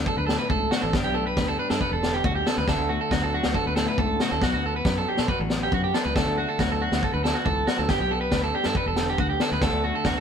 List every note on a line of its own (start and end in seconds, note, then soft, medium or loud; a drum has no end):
0.00 0.91 D3 medium
0.00 0.91 F#3 medium
0.00 0.50 A3 medium
0.00 0.72 D4 medium
0.06 0.17 A4 loud
0.06 muted clean electric guitar stroke medium
0.06 kick medium
0.17 0.36 D2 medium
0.17 0.26 B4 medium
0.27 0.91 A2 medium
0.27 0.37 A4 medium
0.27 snare medium
0.39 0.49 B4 medium
0.50 0.69 C#2 medium
0.50 0.70 A4 medium
0.50 kick loud
0.71 0.95 D4 medium
0.71 0.81 F#4 medium
0.71 snare medium
0.82 0.92 A1 loud
0.82 0.92 A4 medium
0.93 1.03 G1 loud
0.93 2.65 G2 medium
0.93 1.15 B3 medium
0.93 1.59 D4 medium
0.93 1.81 G4 medium
0.93 muted clean electric guitar stroke loud
0.93 kick loud
0.93 snare medium
1.04 1.33 B1 medium
1.04 1.14 G4 medium
1.14 1.26 A3 medium
1.14 1.25 A4 medium
1.27 1.47 B4 medium
1.36 1.56 D2 loud
1.36 2.66 G3 medium
1.36 kick medium
1.36 snare medium
1.48 1.58 A4 medium
1.59 2.70 D4 medium
1.59 1.69 B4 medium
1.70 1.79 G2 medium
1.70 1.80 A4 medium
1.70 snare medium
1.81 2.66 A4 medium
1.81 1.91 B4 medium
1.81 kick medium
1.92 2.19 E1 medium
1.92 2.13 A4 medium
2.03 2.24 D3 medium
2.03 snare medium
2.14 2.24 G4 medium
2.24 2.43 D2 medium
2.24 2.46 B2 medium
2.24 2.35 F#4 medium
2.24 kick loud
2.35 2.45 G4 medium
2.46 2.68 C#3 medium
2.46 2.56 A4 medium
2.46 snare medium
2.58 2.66 D2 medium
2.58 2.68 B4 medium
2.67 2.77 D2 loud
2.67 3.98 D3 medium
2.67 2.89 A3 medium
2.67 3.33 D4 medium
2.67 2.89 A4 medium
2.67 kick medium
2.67 snare medium
2.72 3.54 F#4 medium
2.78 2.97 D2 medium
2.89 4.42 A3 medium
2.89 2.99 F#4 medium
3.01 3.11 A4 medium
3.11 3.39 D2 loud
3.11 4.85 F#3 medium
3.11 3.22 F#4 medium
3.11 kick medium
3.11 snare medium
3.23 3.33 A4 medium
3.34 4.43 D4 medium
3.34 3.54 F#4 medium
3.43 3.54 D2 medium
3.43 snare medium
3.54 4.44 F#4 medium
3.54 3.65 A4 medium
3.54 kick medium
3.67 3.85 D2 loud
3.67 3.76 B4 medium
3.76 4.39 A2 medium
3.76 3.86 A4 medium
3.76 snare medium
3.88 3.98 B4 medium
3.98 4.17 C#2 medium
3.98 4.20 D3 medium
3.98 4.19 A4 medium
3.98 kick loud
4.20 4.41 C#3 medium
4.20 4.31 F#4 medium
4.20 snare medium
4.31 4.41 D2 loud
4.31 4.41 A4 medium
4.42 4.51 B1 loud
4.42 5.50 B2 medium
4.42 4.62 B3 medium
4.42 4.53 F#4 medium
4.42 5.31 F#4 medium
4.42 muted clean electric guitar stroke medium
4.42 kick medium
4.42 snare medium
4.54 4.81 D2 medium
4.54 4.63 F#4 medium
4.64 5.72 B3 medium
4.64 4.75 A4 medium
4.76 4.96 B4 medium
4.85 5.04 F#2 loud
4.85 6.13 F#3 medium
4.85 kick loud
4.85 snare medium
4.98 5.07 A4 medium
5.08 5.95 D4 medium
5.08 5.18 G4 medium
5.17 5.28 B2 medium
5.17 5.29 A4 medium
5.17 snare medium
5.28 6.17 F#4 medium
5.28 5.39 B4 medium
5.28 kick loud
5.40 5.68 A1 medium
5.40 muted clean electric guitar stroke medium
5.50 6.16 F#2 medium
5.50 snare medium
5.63 5.73 G4 medium
5.72 5.91 F#2 medium
5.72 6.13 B3 medium
5.72 5.83 F#4 medium
5.72 kick loud
5.84 5.94 G4 medium
5.94 6.18 D4 medium
5.94 6.04 A4 medium
5.94 snare medium
6.05 6.14 C#2 medium
6.05 6.15 B4 medium
6.16 6.25 D2 loud
6.16 7.87 D3 medium
6.16 6.38 A3 medium
6.16 6.81 D4 medium
6.16 7.02 F#4 medium
6.16 6.36 A4 medium
6.16 kick medium
6.16 snare medium
6.26 6.45 D2 medium
6.38 7.89 A3 medium
6.38 6.48 F#4 medium
6.49 6.59 A4 medium
6.59 6.87 D2 loud
6.59 7.45 F#3 medium
6.59 6.70 F#4 medium
6.59 kick medium
6.59 snare medium
6.72 6.81 A4 medium
6.82 7.90 D4 medium
6.82 7.02 F#4 medium
6.92 7.01 D2 medium
6.92 snare medium
7.03 7.90 F#4 medium
7.03 7.13 A4 medium
7.03 kick medium
7.14 7.33 D2 loud
7.14 7.24 B4 medium
7.24 7.34 A4 medium
7.24 snare medium
7.35 7.45 F#4 medium
7.45 7.65 C#2 loud
7.45 7.67 E3 medium
7.45 7.66 A4 medium
7.45 kick loud
7.67 7.89 F#3 medium
7.67 7.78 F#4 loud
7.67 snare medium
7.78 7.88 D2 loud
7.78 7.88 A4 medium
7.88 7.98 G1 loud
7.88 8.09 B3 medium
7.88 8.54 D4 medium
7.88 8.00 G4 medium
7.88 8.76 G4 medium
7.88 muted clean electric guitar stroke medium
7.88 kick medium
7.88 snare medium
8.01 8.28 B1 medium
8.01 8.11 G4 medium
8.10 9.18 B3 medium
8.10 8.20 A4 medium
8.21 8.42 B4 medium
8.31 8.51 D2 loud
8.31 9.59 G3 medium
8.31 kick medium
8.31 snare medium
8.43 8.54 A4 medium
8.54 9.40 D4 medium
8.54 8.65 G4 medium
8.63 8.75 G2 medium
8.63 8.76 A4 medium
8.63 snare medium
8.75 9.60 A4 medium
8.75 8.87 B4 medium
8.75 kick medium
8.86 9.14 E1 medium
8.86 9.08 A4 medium
8.96 9.59 D3 medium
8.96 snare medium
9.10 9.19 G4 medium
9.18 9.37 D2 medium
9.18 9.60 B3 medium
9.18 9.29 F#4 medium
9.18 kick loud
9.30 9.40 G4 medium
9.40 9.64 D4 medium
9.40 9.51 A4 medium
9.40 snare medium
9.52 9.61 D2 medium
9.52 9.62 B4 medium
9.61 9.71 D2 loud
9.61 10.20 D3 medium
9.61 9.84 A3 medium
9.61 10.20 D4 medium
9.61 10.20 F#4 medium
9.61 9.83 A4 medium
9.61 kick medium
9.61 snare medium
9.72 9.91 D2 medium
9.84 10.20 A3 medium
9.84 9.94 F#4 medium
9.95 10.05 A4 medium
10.04 10.20 D2 loud
10.04 10.20 F#3 medium
10.04 10.16 F#4 medium
10.04 kick medium
10.04 snare medium